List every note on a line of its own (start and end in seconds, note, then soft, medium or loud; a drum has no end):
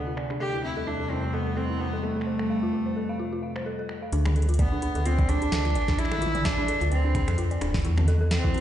0.00 0.37 D2 medium
0.00 0.37 C3 medium
0.00 0.37 D3 medium
0.00 0.37 F3 medium
0.00 0.13 B3 medium
0.07 0.11 F4 medium
0.17 0.26 D5 loud
0.17 finger snap medium
0.30 0.37 D4 medium
0.30 finger snap soft
0.40 2.25 E2 medium
0.40 4.09 C3 medium
0.40 4.09 G3 medium
0.40 4.09 A3 medium
0.40 0.62 G4 loud
0.40 0.45 A4 medium
0.53 0.57 E4 medium
0.64 0.69 C4 medium
0.64 0.88 E4 loud
0.77 0.83 A4 medium
0.87 1.12 D4 medium
0.87 0.95 A4 medium
1.00 1.04 A4 medium
1.10 1.35 C4 medium
1.10 1.15 E4 medium
1.23 1.27 C4 medium
1.33 1.58 B3 medium
1.33 1.42 A4 loud
1.47 1.53 A4 medium
1.57 1.82 C4 medium
1.57 1.62 A4 loud
1.70 1.74 E4 medium
1.80 2.05 B3 medium
1.80 1.85 C4 medium
1.93 2.00 A4 medium
2.03 3.66 A3 medium
2.03 2.12 A4 loud
2.16 2.20 A4 medium
2.21 finger snap medium
2.26 4.11 F2 medium
2.26 2.32 C5 medium
2.39 2.43 A4 medium
2.39 finger snap medium
2.50 2.58 F5 medium
2.63 2.69 F4 loud
2.73 2.78 F4 medium
2.86 2.90 C5 medium
2.96 3.01 A4 medium
3.09 3.16 F5 loud
3.19 3.28 F4 medium
3.33 3.36 F4 medium
3.43 3.51 F5 medium
3.56 3.62 C5 loud
3.56 finger snap medium
3.66 3.78 A4 medium
3.79 3.89 A4 loud
3.89 finger snap medium
4.02 4.09 F5 medium
4.12 4.67 D2 loud
4.12 4.21 D4 medium
4.12 closed hi-hat medium
4.25 4.30 D4 loud
4.25 finger snap medium
4.25 high tom medium
4.36 4.41 A4 medium
4.36 closed hi-hat soft
4.42 closed hi-hat soft
4.49 4.53 F4 medium
4.49 closed hi-hat medium
4.54 closed hi-hat medium
4.59 5.07 B3 medium
4.59 4.67 D5 loud
4.59 kick loud
4.59 closed hi-hat medium
4.72 4.79 D4 loud
4.82 4.87 D4 loud
4.82 closed hi-hat medium
4.95 5.37 D2 medium
4.95 4.99 A4 medium
4.95 closed hi-hat medium
5.05 5.30 C4 loud
5.05 5.11 F4 medium
5.05 closed hi-hat medium
5.19 5.25 D5 medium
5.19 kick loud
5.19 closed hi-hat soft
5.29 6.00 D4 loud
5.29 5.37 D4 loud
5.29 closed hi-hat medium
5.42 5.46 D4 loud
5.42 closed hi-hat medium
5.52 5.77 D2 medium
5.52 5.57 A4 medium
5.52 snare loud
5.52 closed hi-hat medium
5.65 5.69 F4 medium
5.65 finger snap soft
5.65 closed hi-hat soft
5.70 finger snap soft
5.75 6.77 A1 medium
5.75 5.84 D5 loud
5.75 finger snap soft
5.75 closed hi-hat medium
5.82 finger snap soft
5.88 5.95 D4 loud
5.88 finger snap soft
5.88 kick loud
5.88 snare medium
5.88 closed hi-hat medium
5.93 finger snap soft
5.98 6.04 D4 medium
5.98 6.46 E4 loud
5.98 finger snap soft
5.98 closed hi-hat medium
6.05 finger snap soft
6.12 6.16 A4 medium
6.12 finger snap medium
6.12 high tom soft
6.18 6.27 F4 medium
6.18 closed hi-hat medium
6.18 high tom medium
6.26 high tom medium
6.35 6.41 D5 loud
6.35 closed hi-hat medium
6.35 high tom medium
6.45 6.91 D4 loud
6.45 6.53 D4 medium
6.45 kick loud
6.45 snare loud
6.45 closed hi-hat medium
6.58 6.62 D4 loud
6.68 6.73 A4 medium
6.68 closed hi-hat medium
6.81 7.23 D2 medium
6.81 6.85 F4 medium
6.81 closed hi-hat medium
6.91 7.57 C4 medium
6.91 7.00 D5 loud
6.91 closed hi-hat medium
7.04 7.11 D4 medium
7.15 7.20 D4 loud
7.15 finger snap medium
7.15 kick loud
7.15 closed hi-hat medium
7.28 7.58 F2 loud
7.28 7.32 A4 medium
7.28 finger snap medium
7.28 closed hi-hat medium
7.38 7.43 F4 medium
7.38 closed hi-hat medium
7.51 7.58 D5 loud
7.51 closed hi-hat soft
7.61 7.80 D1 loud
7.61 7.70 D4 loud
7.61 finger snap medium
7.61 closed hi-hat medium
7.74 7.78 D4 loud
7.74 finger snap medium
7.74 kick loud
7.74 snare medium
7.74 closed hi-hat medium
7.77 closed hi-hat soft
7.79 closed hi-hat soft
7.82 8.40 E2 loud
7.82 7.90 E4 medium
7.82 closed hi-hat soft
7.85 closed hi-hat medium
7.98 8.02 C4 medium
7.98 finger snap medium
7.98 high tom medium
8.08 8.16 A4 loud
8.08 closed hi-hat medium
8.21 8.27 A4 loud
8.31 8.61 C4 medium
8.31 8.36 A4 loud
8.31 snare loud
8.31 closed hi-hat medium
8.44 8.48 E4 medium
8.44 kick loud
8.54 8.59 C4 medium
8.54 closed hi-hat soft